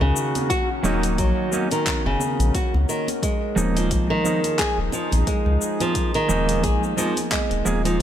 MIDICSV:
0, 0, Header, 1, 6, 480
1, 0, Start_track
1, 0, Key_signature, -6, "minor"
1, 0, Tempo, 681818
1, 353, Time_signature, 4, 2, 24, 8
1, 5646, End_track
2, 0, Start_track
2, 0, Title_t, "Ambient pad"
2, 0, Program_c, 0, 92
2, 0, Note_on_c, 0, 51, 77
2, 0, Note_on_c, 0, 58, 67
2, 0, Note_on_c, 0, 61, 72
2, 0, Note_on_c, 0, 66, 77
2, 0, Note_on_c, 0, 70, 74
2, 2271, Note_on_c, 0, 53, 77
2, 2272, Note_off_c, 0, 51, 0
2, 2272, Note_off_c, 0, 66, 0
2, 2479, Note_on_c, 0, 63, 79
2, 2585, Note_on_c, 0, 68, 76
2, 2951, Note_off_c, 0, 61, 0
2, 5646, Note_off_c, 0, 53, 0
2, 5646, Note_off_c, 0, 58, 0
2, 5646, Note_off_c, 0, 63, 0
2, 5646, Note_off_c, 0, 68, 0
2, 5646, Note_off_c, 0, 70, 0
2, 5646, End_track
3, 0, Start_track
3, 0, Title_t, "Clean electric guitar"
3, 0, Program_c, 1, 27
3, 588, Note_on_c, 1, 54, 93
3, 592, Note_on_c, 1, 58, 87
3, 596, Note_on_c, 1, 61, 87
3, 602, Note_on_c, 1, 63, 106
3, 1045, Note_off_c, 1, 54, 0
3, 1047, Note_off_c, 1, 58, 0
3, 1049, Note_off_c, 1, 61, 0
3, 1052, Note_off_c, 1, 63, 0
3, 1066, Note_on_c, 1, 54, 78
3, 1071, Note_on_c, 1, 58, 74
3, 1077, Note_on_c, 1, 61, 75
3, 1082, Note_on_c, 1, 63, 86
3, 1173, Note_off_c, 1, 54, 0
3, 1176, Note_off_c, 1, 58, 0
3, 1179, Note_off_c, 1, 61, 0
3, 1182, Note_off_c, 1, 63, 0
3, 2505, Note_on_c, 1, 53, 104
3, 2510, Note_on_c, 1, 56, 91
3, 2513, Note_on_c, 1, 58, 89
3, 2518, Note_on_c, 1, 63, 109
3, 2964, Note_off_c, 1, 53, 0
3, 2966, Note_off_c, 1, 56, 0
3, 2968, Note_off_c, 1, 58, 0
3, 2970, Note_off_c, 1, 63, 0
3, 2985, Note_on_c, 1, 53, 85
3, 2989, Note_on_c, 1, 56, 71
3, 2993, Note_on_c, 1, 58, 71
3, 2999, Note_on_c, 1, 63, 90
3, 3093, Note_off_c, 1, 53, 0
3, 3095, Note_off_c, 1, 56, 0
3, 3097, Note_off_c, 1, 58, 0
3, 3100, Note_off_c, 1, 63, 0
3, 4425, Note_on_c, 1, 53, 99
3, 4429, Note_on_c, 1, 56, 91
3, 4433, Note_on_c, 1, 58, 84
3, 4438, Note_on_c, 1, 63, 108
3, 4884, Note_off_c, 1, 53, 0
3, 4886, Note_off_c, 1, 56, 0
3, 4888, Note_off_c, 1, 58, 0
3, 4890, Note_off_c, 1, 63, 0
3, 4903, Note_on_c, 1, 53, 81
3, 4909, Note_on_c, 1, 56, 75
3, 4912, Note_on_c, 1, 58, 75
3, 4917, Note_on_c, 1, 63, 91
3, 5012, Note_off_c, 1, 53, 0
3, 5015, Note_off_c, 1, 56, 0
3, 5017, Note_off_c, 1, 58, 0
3, 5019, Note_off_c, 1, 63, 0
3, 5387, Note_on_c, 1, 53, 87
3, 5390, Note_on_c, 1, 56, 79
3, 5396, Note_on_c, 1, 58, 86
3, 5401, Note_on_c, 1, 68, 101
3, 5494, Note_off_c, 1, 53, 0
3, 5496, Note_off_c, 1, 56, 0
3, 5499, Note_off_c, 1, 58, 0
3, 5501, Note_off_c, 1, 68, 0
3, 5521, Note_on_c, 1, 53, 70
3, 5526, Note_on_c, 1, 56, 66
3, 5530, Note_on_c, 1, 58, 70
3, 5533, Note_on_c, 1, 63, 84
3, 5605, Note_off_c, 1, 53, 0
3, 5608, Note_off_c, 1, 56, 0
3, 5610, Note_off_c, 1, 58, 0
3, 5611, Note_off_c, 1, 63, 0
3, 5646, End_track
4, 0, Start_track
4, 0, Title_t, "Nylon-string guitar"
4, 0, Program_c, 2, 24
4, 7, Note_on_c, 2, 49, 91
4, 342, Note_off_c, 2, 49, 0
4, 350, Note_on_c, 2, 66, 98
4, 480, Note_off_c, 2, 66, 0
4, 592, Note_on_c, 2, 51, 73
4, 721, Note_off_c, 2, 51, 0
4, 833, Note_on_c, 2, 54, 76
4, 1195, Note_off_c, 2, 54, 0
4, 1209, Note_on_c, 2, 51, 78
4, 1435, Note_off_c, 2, 51, 0
4, 1451, Note_on_c, 2, 49, 96
4, 1784, Note_off_c, 2, 49, 0
4, 1794, Note_on_c, 2, 66, 96
4, 1922, Note_off_c, 2, 66, 0
4, 2035, Note_on_c, 2, 51, 75
4, 2162, Note_off_c, 2, 51, 0
4, 2276, Note_on_c, 2, 56, 85
4, 2636, Note_off_c, 2, 56, 0
4, 2649, Note_on_c, 2, 53, 76
4, 2875, Note_off_c, 2, 53, 0
4, 2888, Note_on_c, 2, 51, 105
4, 3222, Note_off_c, 2, 51, 0
4, 3231, Note_on_c, 2, 68, 111
4, 3360, Note_off_c, 2, 68, 0
4, 3473, Note_on_c, 2, 53, 73
4, 3601, Note_off_c, 2, 53, 0
4, 3712, Note_on_c, 2, 56, 81
4, 4074, Note_off_c, 2, 56, 0
4, 4089, Note_on_c, 2, 53, 81
4, 4315, Note_off_c, 2, 53, 0
4, 4330, Note_on_c, 2, 51, 104
4, 4663, Note_off_c, 2, 51, 0
4, 4670, Note_on_c, 2, 68, 102
4, 4800, Note_off_c, 2, 68, 0
4, 4911, Note_on_c, 2, 53, 79
4, 5040, Note_off_c, 2, 53, 0
4, 5151, Note_on_c, 2, 56, 90
4, 5514, Note_off_c, 2, 56, 0
4, 5528, Note_on_c, 2, 53, 76
4, 5646, Note_off_c, 2, 53, 0
4, 5646, End_track
5, 0, Start_track
5, 0, Title_t, "Analog synth bass"
5, 0, Program_c, 3, 38
5, 8, Note_on_c, 3, 37, 89
5, 86, Note_off_c, 3, 37, 0
5, 590, Note_on_c, 3, 27, 98
5, 833, Note_on_c, 3, 34, 82
5, 843, Note_off_c, 3, 27, 0
5, 934, Note_off_c, 3, 34, 0
5, 1449, Note_on_c, 3, 30, 95
5, 1527, Note_off_c, 3, 30, 0
5, 1687, Note_on_c, 3, 34, 106
5, 1766, Note_off_c, 3, 34, 0
5, 1930, Note_on_c, 3, 37, 89
5, 2007, Note_off_c, 3, 37, 0
5, 2514, Note_on_c, 3, 27, 95
5, 2752, Note_on_c, 3, 34, 81
5, 2762, Note_off_c, 3, 27, 0
5, 2853, Note_off_c, 3, 34, 0
5, 3366, Note_on_c, 3, 27, 100
5, 3445, Note_off_c, 3, 27, 0
5, 3607, Note_on_c, 3, 34, 101
5, 3686, Note_off_c, 3, 34, 0
5, 3845, Note_on_c, 3, 37, 95
5, 3925, Note_off_c, 3, 37, 0
5, 4431, Note_on_c, 3, 27, 97
5, 4671, Note_on_c, 3, 34, 86
5, 4681, Note_off_c, 3, 27, 0
5, 4773, Note_off_c, 3, 34, 0
5, 5287, Note_on_c, 3, 27, 101
5, 5366, Note_off_c, 3, 27, 0
5, 5393, Note_on_c, 3, 27, 92
5, 5646, Note_off_c, 3, 27, 0
5, 5646, End_track
6, 0, Start_track
6, 0, Title_t, "Drums"
6, 5, Note_on_c, 9, 64, 83
6, 76, Note_off_c, 9, 64, 0
6, 114, Note_on_c, 9, 82, 77
6, 184, Note_off_c, 9, 82, 0
6, 248, Note_on_c, 9, 46, 42
6, 249, Note_on_c, 9, 82, 29
6, 252, Note_on_c, 9, 63, 80
6, 319, Note_off_c, 9, 46, 0
6, 319, Note_off_c, 9, 82, 0
6, 322, Note_off_c, 9, 63, 0
6, 353, Note_on_c, 9, 36, 105
6, 354, Note_on_c, 9, 46, 54
6, 355, Note_on_c, 9, 82, 42
6, 423, Note_off_c, 9, 36, 0
6, 425, Note_off_c, 9, 46, 0
6, 425, Note_off_c, 9, 82, 0
6, 593, Note_on_c, 9, 64, 88
6, 594, Note_on_c, 9, 82, 79
6, 597, Note_on_c, 9, 63, 71
6, 663, Note_off_c, 9, 64, 0
6, 664, Note_off_c, 9, 82, 0
6, 668, Note_off_c, 9, 63, 0
6, 728, Note_on_c, 9, 46, 46
6, 729, Note_on_c, 9, 82, 32
6, 798, Note_off_c, 9, 46, 0
6, 799, Note_off_c, 9, 82, 0
6, 833, Note_on_c, 9, 36, 99
6, 834, Note_on_c, 9, 46, 52
6, 834, Note_on_c, 9, 82, 42
6, 903, Note_off_c, 9, 36, 0
6, 904, Note_off_c, 9, 46, 0
6, 905, Note_off_c, 9, 82, 0
6, 1072, Note_on_c, 9, 82, 72
6, 1076, Note_on_c, 9, 63, 66
6, 1143, Note_off_c, 9, 82, 0
6, 1146, Note_off_c, 9, 63, 0
6, 1202, Note_on_c, 9, 62, 44
6, 1207, Note_on_c, 9, 46, 48
6, 1208, Note_on_c, 9, 82, 36
6, 1273, Note_off_c, 9, 62, 0
6, 1277, Note_off_c, 9, 46, 0
6, 1278, Note_off_c, 9, 82, 0
6, 1313, Note_on_c, 9, 36, 95
6, 1314, Note_on_c, 9, 39, 79
6, 1314, Note_on_c, 9, 46, 55
6, 1314, Note_on_c, 9, 63, 62
6, 1315, Note_on_c, 9, 82, 42
6, 1383, Note_off_c, 9, 36, 0
6, 1384, Note_off_c, 9, 39, 0
6, 1384, Note_off_c, 9, 46, 0
6, 1384, Note_off_c, 9, 63, 0
6, 1385, Note_off_c, 9, 82, 0
6, 1548, Note_on_c, 9, 63, 65
6, 1553, Note_on_c, 9, 82, 78
6, 1619, Note_off_c, 9, 63, 0
6, 1624, Note_off_c, 9, 82, 0
6, 1690, Note_on_c, 9, 46, 44
6, 1690, Note_on_c, 9, 82, 34
6, 1760, Note_off_c, 9, 46, 0
6, 1761, Note_off_c, 9, 82, 0
6, 1792, Note_on_c, 9, 36, 107
6, 1793, Note_on_c, 9, 46, 54
6, 1793, Note_on_c, 9, 82, 44
6, 1862, Note_off_c, 9, 36, 0
6, 1863, Note_off_c, 9, 46, 0
6, 1864, Note_off_c, 9, 82, 0
6, 1932, Note_on_c, 9, 62, 60
6, 2002, Note_off_c, 9, 62, 0
6, 2035, Note_on_c, 9, 82, 75
6, 2106, Note_off_c, 9, 82, 0
6, 2168, Note_on_c, 9, 62, 50
6, 2171, Note_on_c, 9, 46, 41
6, 2172, Note_on_c, 9, 82, 29
6, 2238, Note_off_c, 9, 62, 0
6, 2241, Note_off_c, 9, 46, 0
6, 2242, Note_off_c, 9, 82, 0
6, 2272, Note_on_c, 9, 36, 100
6, 2274, Note_on_c, 9, 46, 56
6, 2275, Note_on_c, 9, 82, 43
6, 2342, Note_off_c, 9, 36, 0
6, 2345, Note_off_c, 9, 46, 0
6, 2345, Note_off_c, 9, 82, 0
6, 2508, Note_on_c, 9, 63, 78
6, 2516, Note_on_c, 9, 82, 74
6, 2578, Note_off_c, 9, 63, 0
6, 2586, Note_off_c, 9, 82, 0
6, 2651, Note_on_c, 9, 46, 46
6, 2652, Note_on_c, 9, 82, 33
6, 2722, Note_off_c, 9, 46, 0
6, 2723, Note_off_c, 9, 82, 0
6, 2752, Note_on_c, 9, 36, 97
6, 2753, Note_on_c, 9, 46, 57
6, 2753, Note_on_c, 9, 82, 39
6, 2822, Note_off_c, 9, 36, 0
6, 2823, Note_off_c, 9, 46, 0
6, 2824, Note_off_c, 9, 82, 0
6, 2987, Note_on_c, 9, 63, 70
6, 2994, Note_on_c, 9, 82, 73
6, 3058, Note_off_c, 9, 63, 0
6, 3065, Note_off_c, 9, 82, 0
6, 3127, Note_on_c, 9, 46, 46
6, 3127, Note_on_c, 9, 62, 51
6, 3127, Note_on_c, 9, 82, 35
6, 3197, Note_off_c, 9, 46, 0
6, 3198, Note_off_c, 9, 62, 0
6, 3198, Note_off_c, 9, 82, 0
6, 3231, Note_on_c, 9, 36, 98
6, 3232, Note_on_c, 9, 39, 78
6, 3232, Note_on_c, 9, 46, 55
6, 3233, Note_on_c, 9, 82, 39
6, 3302, Note_off_c, 9, 36, 0
6, 3302, Note_off_c, 9, 39, 0
6, 3302, Note_off_c, 9, 46, 0
6, 3303, Note_off_c, 9, 82, 0
6, 3467, Note_on_c, 9, 62, 76
6, 3471, Note_on_c, 9, 82, 72
6, 3537, Note_off_c, 9, 62, 0
6, 3541, Note_off_c, 9, 82, 0
6, 3603, Note_on_c, 9, 63, 70
6, 3606, Note_on_c, 9, 64, 69
6, 3607, Note_on_c, 9, 46, 46
6, 3608, Note_on_c, 9, 82, 34
6, 3674, Note_off_c, 9, 63, 0
6, 3677, Note_off_c, 9, 64, 0
6, 3678, Note_off_c, 9, 46, 0
6, 3678, Note_off_c, 9, 82, 0
6, 3711, Note_on_c, 9, 36, 105
6, 3711, Note_on_c, 9, 46, 55
6, 3712, Note_on_c, 9, 82, 41
6, 3781, Note_off_c, 9, 36, 0
6, 3781, Note_off_c, 9, 46, 0
6, 3782, Note_off_c, 9, 82, 0
6, 3845, Note_on_c, 9, 64, 81
6, 3915, Note_off_c, 9, 64, 0
6, 3952, Note_on_c, 9, 82, 77
6, 4023, Note_off_c, 9, 82, 0
6, 4086, Note_on_c, 9, 46, 43
6, 4086, Note_on_c, 9, 63, 77
6, 4087, Note_on_c, 9, 82, 30
6, 4156, Note_off_c, 9, 63, 0
6, 4157, Note_off_c, 9, 46, 0
6, 4158, Note_off_c, 9, 82, 0
6, 4189, Note_on_c, 9, 46, 58
6, 4190, Note_on_c, 9, 36, 102
6, 4190, Note_on_c, 9, 82, 43
6, 4260, Note_off_c, 9, 46, 0
6, 4260, Note_off_c, 9, 82, 0
6, 4261, Note_off_c, 9, 36, 0
6, 4325, Note_on_c, 9, 46, 34
6, 4396, Note_off_c, 9, 46, 0
6, 4431, Note_on_c, 9, 82, 75
6, 4437, Note_on_c, 9, 63, 83
6, 4439, Note_on_c, 9, 64, 72
6, 4502, Note_off_c, 9, 82, 0
6, 4507, Note_off_c, 9, 63, 0
6, 4510, Note_off_c, 9, 64, 0
6, 4566, Note_on_c, 9, 64, 84
6, 4567, Note_on_c, 9, 46, 50
6, 4568, Note_on_c, 9, 82, 33
6, 4637, Note_off_c, 9, 64, 0
6, 4638, Note_off_c, 9, 46, 0
6, 4638, Note_off_c, 9, 82, 0
6, 4671, Note_on_c, 9, 36, 98
6, 4672, Note_on_c, 9, 46, 59
6, 4673, Note_on_c, 9, 82, 41
6, 4741, Note_off_c, 9, 36, 0
6, 4742, Note_off_c, 9, 46, 0
6, 4743, Note_off_c, 9, 82, 0
6, 4811, Note_on_c, 9, 82, 30
6, 4812, Note_on_c, 9, 62, 37
6, 4881, Note_off_c, 9, 82, 0
6, 4882, Note_off_c, 9, 62, 0
6, 4913, Note_on_c, 9, 63, 71
6, 4913, Note_on_c, 9, 82, 82
6, 4984, Note_off_c, 9, 63, 0
6, 4984, Note_off_c, 9, 82, 0
6, 5044, Note_on_c, 9, 62, 55
6, 5048, Note_on_c, 9, 46, 52
6, 5049, Note_on_c, 9, 82, 36
6, 5115, Note_off_c, 9, 62, 0
6, 5119, Note_off_c, 9, 46, 0
6, 5119, Note_off_c, 9, 82, 0
6, 5151, Note_on_c, 9, 36, 97
6, 5152, Note_on_c, 9, 39, 82
6, 5152, Note_on_c, 9, 46, 58
6, 5153, Note_on_c, 9, 63, 59
6, 5153, Note_on_c, 9, 82, 43
6, 5221, Note_off_c, 9, 36, 0
6, 5223, Note_off_c, 9, 39, 0
6, 5223, Note_off_c, 9, 46, 0
6, 5223, Note_off_c, 9, 63, 0
6, 5224, Note_off_c, 9, 82, 0
6, 5287, Note_on_c, 9, 46, 33
6, 5357, Note_off_c, 9, 46, 0
6, 5391, Note_on_c, 9, 63, 62
6, 5392, Note_on_c, 9, 82, 78
6, 5461, Note_off_c, 9, 63, 0
6, 5463, Note_off_c, 9, 82, 0
6, 5529, Note_on_c, 9, 46, 48
6, 5530, Note_on_c, 9, 82, 32
6, 5600, Note_off_c, 9, 46, 0
6, 5600, Note_off_c, 9, 82, 0
6, 5646, End_track
0, 0, End_of_file